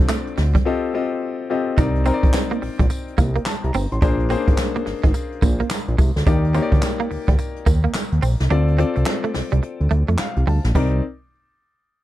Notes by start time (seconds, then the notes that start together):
Already playing: C4 D4 F4 A4 D5
0.09 A3, snare, clap, tambourine
0.27 closed hi-hat
0.37 D2, muted clean electric guitar stroke, snare, open hi-hat
0.55 G3, kick, closed hi-hat
0.65 C4 F4 G4 A4 D#5
0.94 C4 F4 G4 A4 D#5
1.50 C4 F4 G4 A4 D#5
1.78 C2 C4 D#4 A#4 D5, kick, closed hi-hat, tambourine
1.95 closed hi-hat
2.05 C4 D#4 A#4 C5, closed hi-hat, tambourine
2.14 D5
2.23 A#1, muted clean electric guitar stroke, kick, closed hi-hat
2.33 snare, clap, tambourine
2.51 A#3, closed hi-hat
2.62 A#1, muted clean electric guitar stroke, open hi-hat
2.79 A#1 G3, kick, closed hi-hat
2.90 muted clean electric guitar stroke, closed hi-hat, tambourine
3.08 closed hi-hat
3.18 C2 A#3, kick, closed hi-hat, tambourine
3.35 A#3, closed hi-hat
3.46 A5, snare, clap, tambourine
3.64 C2 A#5, closed hi-hat
3.74 G1 C4, open hi-hat, tambourine
3.92 A1 C6, closed hi-hat
4.02 A#1 A#3 D4 G#4 C5, kick, closed hi-hat, tambourine
4.20 closed hi-hat
4.30 A#3 C4 C#4 G#4 C5, closed hi-hat, tambourine
4.37 D4
4.47 G#1, muted clean electric guitar stroke, kick, closed hi-hat
4.58 snare, clap, tambourine
4.76 A#3, closed hi-hat
4.86 G#1, muted clean electric guitar stroke, snare, open hi-hat
5.04 G#1 G#3, kick, closed hi-hat
5.14 muted clean electric guitar stroke, closed hi-hat, tambourine
5.32 closed hi-hat
5.42 A#1 A#3, kick, closed hi-hat, tambourine
5.60 A#3, closed hi-hat
5.70 snare, clap, tambourine
5.88 A#1, closed hi-hat
5.98 C2 G#3, kick, open hi-hat, tambourine
6.16 D2, snare, closed hi-hat
6.26 D#2 A#3 D4 D#4 G4 D5, kick, closed hi-hat, tambourine
6.44 closed hi-hat
6.54 A#3 C4 D#4 G4 C#5, closed hi-hat, tambourine
6.62 D5
6.72 D2, muted clean electric guitar stroke, kick, closed hi-hat
6.82 snare, clap, tambourine
7.00 A#3, closed hi-hat
7.11 D2, muted clean electric guitar stroke, open hi-hat
7.28 D2 G3, kick, closed hi-hat
7.39 muted clean electric guitar stroke, closed hi-hat, tambourine
7.56 closed hi-hat
7.66 D#2 A#3, kick, closed hi-hat, tambourine
7.84 A#3, closed hi-hat
7.94 snare, clap, tambourine
8.12 D#2, closed hi-hat
8.22 A#1 C4, open hi-hat, tambourine
8.40 C2, snare, closed hi-hat
8.50 D2 C4 D4 F4 A4 D5, closed hi-hat
8.68 closed hi-hat
8.78 C4 F4 A4 D5, closed hi-hat
8.96 C2, muted clean electric guitar stroke, closed hi-hat
9.06 snare, clap
9.24 A3, closed hi-hat
9.34 C2, muted clean electric guitar stroke, snare, open hi-hat
9.52 C2 G3, closed hi-hat
9.63 muted clean electric guitar stroke, closed hi-hat
9.80 D2, closed hi-hat
9.91 D2 A3, closed hi-hat
10.08 F2 A3, closed hi-hat
10.18 F5, snare, clap
10.36 C2, closed hi-hat
10.47 D2 G3 A5, open hi-hat
10.64 A#1, snare, closed hi-hat
10.75 C2 G3 C4 D#4 A#4 D5, kick, crash